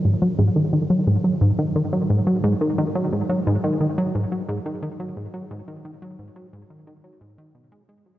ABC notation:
X:1
M:4/4
L:1/16
Q:1/4=88
K:G#m
V:1 name="Analog synth bass" clef=bass
G,, F, G,, D, D, F, G,, F, G,, D, D, F, G,, F, G,, D, | D, F, G,, F, G,, D, D, F, G,, F, G,, D, D, F, G,, F, | G,, D, D, F, G,, F, G,, D, D, F, G,, D, B,, G, G, F, |]